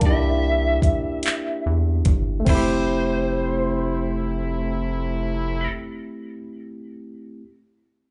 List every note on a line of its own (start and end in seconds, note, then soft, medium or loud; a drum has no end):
0.00 0.80 C2 loud
0.00 2.41 A#3 medium
0.00 2.42 D4 medium
0.00 0.09 D#4 soft
0.00 kick loud
0.00 closed hi-hat medium
0.06 2.45 G4 medium
0.06 1.63 E5 medium
0.10 2.47 E4 medium
0.82 0.91 E2 soft
0.82 kick medium
0.82 closed hi-hat medium
1.23 clap loud
1.23 closed hi-hat medium
1.66 2.02 E2 medium
2.05 2.43 G1 medium
2.05 kick loud
2.05 closed hi-hat medium
2.40 6.34 A3 medium
2.45 5.68 F1 loud
2.45 5.67 C3 medium
2.45 5.67 A3 medium
2.45 6.37 C4 medium
2.45 5.68 E4 medium
2.45 kick loud
2.45 crash medium
2.49 6.39 E4 medium
2.49 5.69 C5 medium
2.55 6.42 G4 medium